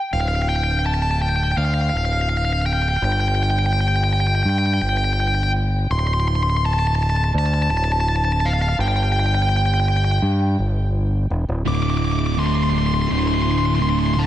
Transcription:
0.00 0.13 G5 medium
0.13 1.53 D1 medium
0.13 0.20 F5 medium
0.21 0.28 F5 medium
0.28 0.35 F5 medium
0.35 0.42 F5 medium
0.42 0.49 F5 medium
0.49 0.55 G5 medium
0.56 0.63 G5 medium
0.64 0.71 G5 medium
0.71 0.78 G5 medium
0.79 0.86 G5 medium
0.86 0.94 A5 medium
0.94 1.02 A5 medium
1.02 1.10 A5 medium
1.11 1.19 A5 medium
1.22 1.29 G5 medium
1.29 1.35 G5 medium
1.36 1.43 G5 medium
1.43 1.51 G5 medium
1.51 1.57 G5 medium
1.57 1.90 D2 medium
1.57 1.65 F5 medium
1.65 1.73 F5 medium
1.74 1.81 F5 medium
1.81 1.89 F5 medium
1.89 1.97 F5 medium
1.93 2.98 D1 medium
1.93 2.05 F5 medium
2.05 2.13 F5 medium
2.13 2.21 F5 medium
2.21 2.29 F5 medium
2.29 2.37 F5 medium
2.37 2.44 F5 medium
2.45 2.52 F5 medium
2.53 2.61 F5 medium
2.62 2.66 F5 medium
2.66 2.72 G5 medium
2.73 2.80 G5 medium
2.82 2.88 G5 medium
2.88 2.96 G5 medium
2.96 3.04 G5 medium
3.02 4.42 G1 medium
3.02 3.12 G5 medium
3.12 3.20 G5 medium
3.20 3.28 G5 medium
3.28 3.35 G5 medium
3.35 3.43 G5 medium
3.43 3.50 G5 medium
3.50 3.58 G5 medium
3.59 3.66 G5 medium
3.66 3.72 G5 medium
3.73 3.80 G5 medium
3.81 3.87 G5 medium
3.88 3.95 G5 medium
3.96 4.03 G5 medium
4.04 4.11 G5 medium
4.13 4.20 G5 medium
4.20 4.26 G5 medium
4.27 4.35 G5 medium
4.35 4.42 G5 medium
4.43 4.78 G2 medium
4.43 4.49 G5 medium
4.49 4.57 G5 medium
4.58 4.66 G5 medium
4.66 4.73 G5 medium
4.74 4.81 G5 medium
4.81 5.86 G1 medium
4.81 4.89 G5 medium
4.89 4.97 G5 medium
4.97 5.04 G5 medium
5.04 5.12 G5 medium
5.13 5.20 G5 medium
5.20 5.27 G5 medium
5.28 5.34 G5 medium
5.35 5.42 G5 medium
5.43 5.51 G5 medium
5.90 7.30 D1 medium
5.90 5.99 C6 medium
5.99 6.07 C6 medium
6.07 6.13 C6 medium
6.14 6.19 C6 medium
6.20 6.27 C6 medium
6.28 6.35 C6 medium
6.35 6.42 C6 medium
6.43 6.49 C6 medium
6.50 6.56 C6 medium
6.57 6.64 C6 medium
6.66 6.73 A5 medium
6.73 6.79 A5 medium
6.79 6.86 A5 medium
6.87 6.94 A5 medium
6.95 7.02 A5 medium
7.03 7.09 A5 medium
7.10 7.16 A5 medium
7.16 7.24 A5 medium
7.24 7.31 A5 medium
7.34 7.67 D2 medium
7.38 7.45 A5 medium
7.46 7.53 A5 medium
7.54 7.62 A5 medium
7.62 7.70 A5 medium
7.70 8.74 D1 medium
7.70 7.77 A5 medium
7.77 7.84 A5 medium
7.84 7.92 A5 medium
7.92 8.00 A5 medium
8.00 8.08 A5 medium
8.08 8.15 A5 medium
8.16 8.24 A5 medium
8.25 8.32 A5 medium
8.32 8.40 A5 medium
8.40 8.48 A5 medium
8.46 8.53 F5 medium
8.53 8.61 F5 medium
8.62 8.68 F5 medium
8.69 8.77 F5 medium
8.78 10.18 G1 medium
8.78 8.87 G5 medium
8.88 8.96 G5 medium
8.96 9.03 G5 medium
9.03 9.11 G5 medium
9.12 9.19 G5 medium
9.19 9.26 G5 medium
9.26 9.34 G5 medium
9.35 9.42 G5 medium
9.42 9.49 G5 medium
9.49 9.56 G5 medium
9.56 9.64 G5 medium
9.66 9.73 G5 medium
9.74 9.79 G5 medium
9.80 9.88 G5 medium
9.88 9.96 G5 medium
9.97 10.04 G5 medium
10.04 10.11 G5 medium
10.11 10.19 G5 medium
10.22 10.55 G2 medium
10.59 11.26 G1 medium
11.30 11.46 E1 medium
11.49 11.64 D1 medium
11.65 13.06 D1 medium
11.65 12.36 D2 medium
11.65 12.37 A2 medium
11.65 12.37 D3 medium
11.65 11.75 D6 medium
11.75 11.82 D6 medium
11.82 11.89 D6 medium
11.90 11.97 D6 medium
11.97 12.04 D6 medium
12.05 12.11 D6 medium
12.12 12.19 D6 medium
12.19 12.26 D6 medium
12.26 12.33 D6 medium
12.34 12.72 D2 medium
12.34 12.39 D6 medium
12.38 12.73 A2 medium
12.38 12.73 D3 medium
12.38 12.46 C6 medium
12.46 12.54 C6 medium
12.55 12.63 C6 medium
12.63 12.70 C6 medium
12.70 13.08 D2 medium
12.70 13.09 A2 medium
12.70 12.78 C6 medium
12.74 13.09 D3 medium
12.78 12.86 C6 medium
12.87 12.94 C6 medium
12.94 13.01 C6 medium
13.02 13.10 C6 medium
13.09 14.27 D1 medium
13.09 13.79 D2 medium
13.09 13.79 A2 medium
13.09 13.80 D3 medium
13.09 13.19 C6 medium
13.19 13.27 C6 medium
13.27 13.34 C6 medium
13.34 13.42 C6 medium
13.42 13.50 C6 medium
13.51 13.58 C6 medium
13.58 13.65 C6 medium
13.66 13.74 C6 medium
13.75 13.82 C6 medium
13.80 14.15 D2 medium
13.80 14.16 A2 medium
13.80 14.16 D3 medium
13.80 13.89 C6 medium
13.89 13.97 C6 medium
13.99 14.06 C6 medium
14.06 14.13 C6 medium
14.14 14.27 D2 medium
14.14 14.27 A2 medium
14.14 14.27 D3 medium
14.14 14.22 C6 medium
14.19 14.25 A5 medium

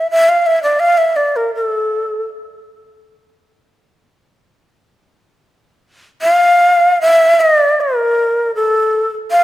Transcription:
0.11 0.30 E5 loud
0.29 0.48 F5 medium
0.46 0.62 E5 medium
0.63 0.81 D5 medium
0.80 0.99 F5 loud
0.98 1.18 E5 medium
1.16 1.38 D5 medium
1.36 1.54 A#4 medium
1.55 2.26 A4 medium
6.22 6.98 F5 loud
7.01 7.42 E5 loud
7.40 7.82 D5 medium
7.81 8.55 A#4 medium
8.55 9.09 A4 medium
9.31 9.44 F5 loud

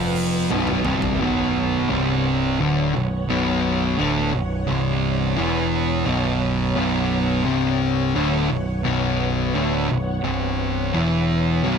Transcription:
0.00 0.46 F1 medium
0.00 0.49 F2 medium
0.00 0.50 F3 loud
0.00 1.16 B3 medium
0.00 1.18 B4 medium
0.00 1.15 F#5 medium
0.15 open hi-hat medium
0.50 0.82 B0 medium
0.50 0.84 B1 loud
0.50 0.84 B2 loud
0.50 high tom medium
0.67 mid tom medium
0.85 1.18 C1 loud
0.85 1.18 C2 loud
0.85 1.19 C3 loud
0.85 mid tom loud
1.02 floor tom loud
1.19 1.85 B0 loud
1.19 1.88 B1 loud
1.19 1.89 B2 loud
1.19 11.78 B3 medium
1.19 11.78 C#5 medium
1.19 11.78 F#5 medium
1.90 2.56 C1 loud
1.90 2.58 C2 medium
1.90 2.58 C3 loud
2.60 2.92 D1 loud
2.60 2.93 D2 medium
2.60 2.93 D3 loud
2.94 3.27 B0 medium
2.94 3.22 B1 medium
3.30 3.95 B0 loud
3.30 3.98 B1 loud
3.30 3.98 B2 loud
3.98 4.31 D1 loud
3.98 4.32 D2 loud
3.98 4.32 D3 loud
4.33 4.66 B0 medium
4.33 4.61 B1 medium
4.67 5.34 C1 loud
4.67 5.36 C2 medium
4.67 5.36 C3 loud
5.37 6.03 E1 medium
5.37 6.05 E2 medium
5.37 6.05 E3 loud
6.05 6.72 B0 loud
6.05 6.74 B1 loud
6.05 6.75 B2 loud
6.76 7.42 B0 loud
6.76 7.44 B1 loud
6.76 7.44 B2 loud
7.44 8.11 C1 loud
7.44 8.14 C2 loud
7.44 8.14 C3 loud
8.15 8.48 D1 medium
8.15 8.49 D2 medium
8.15 8.49 D3 loud
8.50 8.83 B0 medium
8.50 8.78 B1 medium
8.84 9.51 B0 loud
8.84 9.53 B1 loud
8.84 9.53 B2 loud
9.55 9.88 D1 loud
9.55 9.89 D2 loud
9.55 9.89 D3 loud
9.89 10.23 B0 medium
9.89 10.17 B1 medium
10.24 10.91 C1 loud
10.24 10.93 C2 medium
10.24 10.93 C3 loud
10.94 11.60 E1 medium
10.94 11.63 E2 medium
10.94 11.63 E3 loud
11.63 11.78 B0 loud
11.63 11.78 B1 loud
11.63 11.78 B2 loud

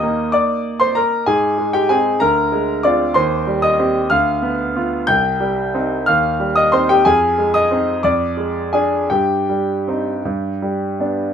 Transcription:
0.00 0.31 D#2 soft
0.00 1.24 A#3 soft
0.00 1.24 D#4 soft
0.00 0.30 D#5 soft
0.00 0.33 D#6 medium
0.32 0.77 D5 soft
0.32 0.80 D6 medium
0.80 0.95 C5 medium
0.80 0.96 C6 medium
0.95 1.26 A#4 soft
0.95 1.27 A#5 medium
1.26 2.18 G#2 soft
1.26 1.71 G#4 soft
1.26 1.74 G#5 medium
1.58 2.08 G#3 soft
1.73 1.89 G4 medium
1.73 1.90 G5 medium
1.89 2.18 C4 soft
1.89 2.18 D#4 soft
1.89 2.19 G#4 medium
1.89 2.20 G#5 medium
2.20 3.13 D2 soft
2.20 2.80 A#4 medium
2.20 2.84 A#5 medium
2.52 3.03 G#3 soft
2.83 3.12 C4 soft
2.83 3.13 F4 soft
2.83 3.13 D5 soft
2.83 3.15 D6 medium
3.14 4.08 D#2 soft
3.14 3.60 C5 medium
3.14 3.63 C6 medium
3.47 3.99 G3 soft
3.62 4.08 D#5 medium
3.62 4.11 D#6 medium
3.79 4.08 C4 soft
3.79 4.08 G4 soft
4.10 5.06 D2 soft
4.10 5.05 F5 medium
4.10 5.08 F6 medium
4.42 4.74 B3 soft
4.76 5.05 B3 soft
4.76 5.06 F4 soft
5.07 6.04 C2 soft
5.07 6.03 G5 medium
5.07 6.06 G6 medium
5.40 5.94 G3 soft
5.74 6.04 C4 soft
5.74 6.04 D#4 soft
6.06 7.03 D#2 soft
6.06 6.54 F5 medium
6.06 6.56 F6 medium
6.40 6.94 G3 soft
6.56 6.73 D#5 medium
6.56 6.73 D#6 medium
6.72 7.03 C4 soft
6.72 7.03 D#4 soft
6.72 6.89 C5 medium
6.72 6.90 C6 medium
6.89 7.05 G4 soft
6.89 7.06 G5 medium
7.05 8.02 F2 soft
7.05 7.52 G#4 soft
7.05 7.55 G#5 medium
7.38 7.92 G#3 soft
7.54 8.01 D#5 medium
7.54 8.04 D#6 medium
7.71 8.01 C4 soft
7.71 8.02 D#4 soft
8.03 9.07 F2 soft
8.03 8.69 D5 soft
8.03 8.73 D6 medium
8.37 8.95 G#3 soft
8.73 9.07 D4 soft
8.73 9.08 G#4 soft
8.73 9.10 G#5 soft
9.10 10.22 G2 soft
9.10 10.97 G4 soft
9.10 11.00 G5 medium
9.49 10.11 G3 soft
9.88 10.21 C4 soft
9.88 10.22 D#4 soft
10.25 11.34 G2 soft
10.62 11.24 G3 soft
11.00 11.34 B3 soft
11.00 11.34 D4 soft

